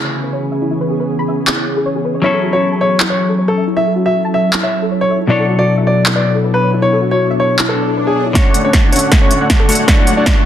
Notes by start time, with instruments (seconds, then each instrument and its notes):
Already playing: clean electric guitar C#3 C#4 E4 B4, ambient pad E3 B3 C#4 G#4
0.04 synth arpeggio sound C#5
0.24 synth arpeggio sound B4
0.33 synth arpeggio sound C#5
0.52 synth arpeggio sound E5
0.62 synth arpeggio sound E4
0.71 synth arpeggio sound E4
0.81 synth arpeggio sound B4
0.90 synth arpeggio sound G#4
1.00 synth arpeggio sound B4
1.19 synth arpeggio sound B5
1.28 synth arpeggio sound E5
1.47 synth arpeggio sound E4, clap
1.57 synth arpeggio sound C#5
1.76 synth arpeggio sound G#4
1.86 synth arpeggio sound C#5
1.95 synth arpeggio sound G#4
2.05 synth arpeggio sound B4
2.15 synth arpeggio sound C#5
2.22 clean electric guitar F#3 C#4 E4 A4, ambient pad F#3 E4 A4, synth arpeggio sound E4, grand piano C#5
2.34 synth arpeggio sound A4
2.43 synth arpeggio sound F#4
2.53 synth arpeggio sound F#4, grand piano C#5
2.72 synth arpeggio sound A5
2.81 grand piano C#5, synth arpeggio sound E5
3.00 synth arpeggio sound E4, clap
3.10 grand piano C#5, synth arpeggio sound C#5
3.29 synth arpeggio sound A4
3.38 synth arpeggio sound C#5
3.48 grand piano A4
3.57 synth arpeggio sound E5
3.67 synth arpeggio sound E4
3.77 synth arpeggio sound E4, grand piano E5
3.87 synth arpeggio sound A4
3.96 synth arpeggio sound F#4
4.06 synth arpeggio sound F#4, grand piano E5
4.25 synth arpeggio sound A5
4.34 synth arpeggio sound E5, grand piano E5
4.53 synth arpeggio sound E4, clap
4.63 synth arpeggio sound C#5, grand piano E5
4.82 synth arpeggio sound A4
4.91 synth arpeggio sound C#5
5.01 grand piano C#5
5.10 synth arpeggio sound E5
5.20 synth arpeggio sound E4
5.27 clean electric guitar B2 F#3 D4 A4, ambient pad B3 D4 C#5, synth arpeggio sound E4, grand piano D5
5.31 clean electric guitar C#5
5.39 synth arpeggio sound A4
5.49 synth arpeggio sound F#4
5.58 synth arpeggio sound F#4, grand piano D5
5.77 synth arpeggio sound E5
5.87 synth arpeggio sound C#5, grand piano D5
6.06 synth arpeggio sound E4, clap
6.16 synth arpeggio sound B4, grand piano D5
6.35 synth arpeggio sound A4
6.44 synth arpeggio sound B4
6.54 grand piano B4
6.63 synth arpeggio sound C#5
6.73 synth arpeggio sound E4
6.82 synth arpeggio sound E4, grand piano C#5
6.92 synth arpeggio sound A4
7.01 synth arpeggio sound F#4
7.11 synth arpeggio sound F#4, grand piano C#5
7.30 synth arpeggio sound E5
7.40 synth arpeggio sound C#5, grand piano C#5
7.59 synth arpeggio sound E4, clap, swell
7.69 grand piano A4, synth arpeggio sound B4
7.88 synth arpeggio sound A4
7.97 synth arpeggio sound B4
8.07 grand piano G#4
8.16 synth arpeggio sound C#5
8.26 synth arpeggio sound E4
8.33 clean electric guitar D3 A3 F#4 C#5, ambient pad F#3 C#4 D4 A4, supersaw synth A3 D4 F#4 C#5 F#5, grand piano C#4 C#5, kick, snare, closed hi-hat, riser
8.54 closed hi-hat
8.64 supersaw synth A3 D4 F#4 C#5 F#5, grand piano C#4 C#5
8.73 kick, snare, closed hi-hat
8.92 supersaw synth A3 D4 F#4 C#5 F#5, grand piano C#4 C#5, closed hi-hat
8.96 closed hi-hat
8.99 supersaw synth A3 D4 F#4 C#5 F#5, closed hi-hat
9.12 supersaw synth A3 D4 F#4, kick, snare, closed hi-hat
9.21 supersaw synth A3 D4 F#4 C#5 F#5, grand piano C#4 C#5
9.31 closed hi-hat
9.41 supersaw synth A3 D4 F#4 C#5 F#5
9.50 kick, snare, closed hi-hat
9.60 grand piano A3 A4
9.68 clean electric guitar D3 A3 F#4 C#5, supersaw synth A3 D4 F#4 C#5 F#5, open hi-hat
9.72 closed hi-hat
9.75 supersaw synth A3 D4 F#4 C#5 F#5, closed hi-hat
9.86 clean electric guitar D3 A3 F#4 C#5, grand piano D4 D5, supersaw synth F#4 F#5, kick, snare, closed hi-hat
10.07 closed hi-hat
10.17 supersaw synth A3 D4 F#4 C#5 F#5, grand piano D4 D5
10.26 kick, snare, closed hi-hat